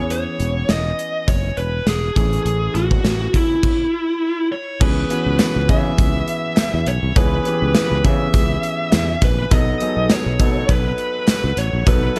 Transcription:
Already playing: E2 E3 B3 C#4 G#4 C#5
0.10 C#5, closed hi-hat
0.40 E1, closed hi-hat
0.69 E1 D#5, snare, closed hi-hat
0.99 closed hi-hat
1.28 F#1 C#5, kick, closed hi-hat
1.57 E1 B4, closed hi-hat
1.86 E1 G#4, snare, closed hi-hat
2.16 A1 E3 A3 C#4 G#4, kick, closed hi-hat
2.33 closed hi-hat
2.45 A1, closed hi-hat
2.74 A1 F#4, closed hi-hat
2.91 kick
3.04 A1, snare, closed hi-hat
3.34 E4, kick, closed hi-hat
3.63 kick, crash
4.52 C#5
4.80 C#2 E3 B3 C#4 G#4 B4, kick, crash
5.10 E3 B3 C#4 F#4, closed hi-hat
5.26 C#2
5.39 B4, snare, clap, closed hi-hat, tambourine
5.56 C#2
5.68 C#3 E3 B3 C#4 G#4 E5, kick, closed hi-hat
5.98 C#2, kick, closed hi-hat
6.28 closed hi-hat
6.57 snare, clap, closed hi-hat, tambourine
6.74 E2
6.86 B1 C#5, closed hi-hat
7.03 C2
7.16 C#2 E3 B3 C#4 G#4 B4, kick, closed hi-hat
7.45 E3 B3 C#4 G4, closed hi-hat
7.53 G#4
7.62 C#2
7.75 B4, snare, clap, closed hi-hat, tambourine
7.91 C#2
8.04 C#3 E3 B3 C#4 G#4 E5, kick, closed hi-hat
8.34 C#2, kick, closed hi-hat
8.63 closed hi-hat
8.92 E2, snare, clap, closed hi-hat, tambourine
9.22 A#1 B4, kick, closed hi-hat
9.51 B1 F#3 B3 D#4 A4 D#5, kick, closed hi-hat
9.80 F#3 B3 D#4 G#4, closed hi-hat
9.88 A4
9.97 B1
10.10 C#5, snare, clap, closed hi-hat, tambourine
10.26 B1
10.39 B2 F#3 B3 D#4 A4, kick, closed hi-hat
10.69 B1 B4, kick, closed hi-hat
10.98 closed hi-hat
11.28 snare, clap, closed hi-hat, tambourine
11.44 C#2
11.57 A1 C#5, closed hi-hat
11.73 A#1
11.86 B1 F#3 B3 D#4 A4 B4, kick, closed hi-hat
12.16 F#3 B3, closed hi-hat

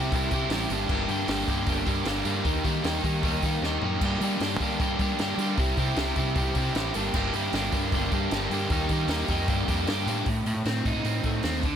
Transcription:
Already playing: C3 G3 C4 E4 G4
0.11 C2 C3 G3 C4 E4 G4, kick, open hi-hat
0.31 C3 G3 C4 E4, kick, open hi-hat
0.35 G4
0.49 A1 C3 G3 C4 E4, snare, open hi-hat
0.53 G4
0.70 G1 G2 D3 G3 A#3 D4 G4, open hi-hat
0.89 G1 G2 D3 G3 A#3 D4 G4, kick, crash
1.08 G2 D3 G3 A#3 D4 G4, open hi-hat
1.27 G1 G2 D3 G3 A#3 D4 G4, snare, open hi-hat
1.47 G2 D3 G3 A#3 D4 G4, kick, open hi-hat
1.67 G1 G2 D3 G3 A#3 D4 G4, kick, open hi-hat
1.86 G2 D3 G3 A#3 D4 G4, kick, open hi-hat
2.05 G1 G2 D3 G3 A#3 D4 G4, snare, open hi-hat
2.25 G2 D3 G3 A#3 D4 G4, open hi-hat
2.44 D#2 D#3 G3 A#3 D#4 G4, kick, open hi-hat
2.64 D#3 G3 A#3 D#4 G4, kick, open hi-hat
2.84 D#2 D#3 G3 A#3 D#4 G4, snare, open hi-hat
3.03 D#3 G3 A#3 D#4 G4, kick, open hi-hat
3.23 D#2 D#3 G3 A#3 D#4 G4, kick, open hi-hat
3.42 D#3 G3 A#3 D#4 G4, kick, open hi-hat
3.62 D#2 D#3 G3 A#3 D#4 G4, snare
3.82 F#2 D#3 G3 A#3 D#4 G4, floor tom
4.01 G2 D3 G3 A#3 D4 G4, kick, crash
4.21 G2 D3 G3 A#3 D4 G4, open hi-hat
4.40 G2 D3 G3 A#3 D4 G4, snare, open hi-hat
4.60 G2 D3 G3 A#3 D4 G4, kick, open hi-hat
4.80 G2 D3 G3 A#3 D4 G4, kick, open hi-hat
4.99 G2 D3 G3 A#3 D4 G4, kick, open hi-hat
5.19 G2 D3 G3 A#3 D4 G4, snare, open hi-hat
5.37 G2 D3 G3, open hi-hat
5.41 A#3 D4 G4
5.57 C2 C3 G3 C4 E4 G4, kick, open hi-hat
5.77 C3 G3 C4 E4 G4, kick, open hi-hat
5.96 C2 C3 G3 C4 E4 G4, snare, open hi-hat
6.16 C3 G3 C4 E4 G4, kick, open hi-hat
6.36 C2 C3 G3 C4 E4 G4, kick, open hi-hat
6.55 C3 G3 C4 E4 G4, kick, open hi-hat
6.75 A1 C3 G3 C4 E4 G4, snare, open hi-hat
6.94 G1 G2 D3 G3 A#3 D4 G4, open hi-hat
7.13 G1 G2 D3 G3 A#3 D4 G4, kick, crash
7.33 G2 D3 G3 A#3 D4 G4, open hi-hat
7.53 G1 G2 D3 G3 A#3 D4 G4, snare, open hi-hat
7.71 G2 D3 G3 A#3 D4 G4, kick, open hi-hat
7.92 G1 G2 D3 G3 A#3 D4 G4, kick, open hi-hat
8.12 G2 D3 G3 A#3 D4 G4, kick, open hi-hat
8.31 G1 G2 D3 G3 A#3 D4 G4, snare, open hi-hat
8.50 G2 D3 G3 A#3 D4, open hi-hat
8.54 G4
8.70 D#2 D#3 G3 A#3 D#4 G4, kick, open hi-hat
8.89 D#3 G3 A#3 D#4 G4, kick, open hi-hat
9.08 D#2 D#3 G3 A#3 D#4 G4, snare, open hi-hat
9.28 F2 D#3 G3 A#3 D#4 G4, kick, open hi-hat
9.47 G2 D3 G3 A#3 D4 G4, kick, open hi-hat
9.67 F2 G2 D3 G3 A#3 D4 G4, kick, open hi-hat
9.87 G2 D3 G3 A#3 D4 G4, snare, open hi-hat
10.06 G2 A2 D3 G3 A#3 D4 G4, open hi-hat
10.26 A2, kick, open hi-hat
10.46 A2, open hi-hat
10.56 A2
10.65 A2 C4, snare, open hi-hat
10.85 A2 D#4, kick, open hi-hat
10.96 A2
11.04 A2 C4, open hi-hat
11.24 A2 A3, kick, open hi-hat
11.43 D#2 C4, snare, open hi-hat
11.63 D2 D3, kick, open hi-hat

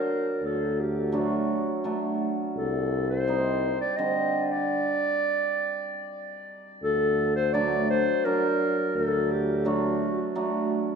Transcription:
Already playing: F#3 A#4
0.42 D2 A4
0.80 G4
1.12 F#3 A3 D4
1.17 F#4
1.84 F#3 A3 D4
2.56 C2 A4
3.10 C5
3.27 G3 C4 D#4
3.81 D5
3.97 D3 G3 C4 D#5
4.46 D#5
4.51 D5
6.83 D2 A4
7.36 C5
7.53 F#3 A3 D4 D5
7.90 C5
8.25 F#3 D4 A#4
8.95 D2 A4
9.31 G4
9.65 F#3 A3 D4 F#4
10.35 F#3 A3 D4

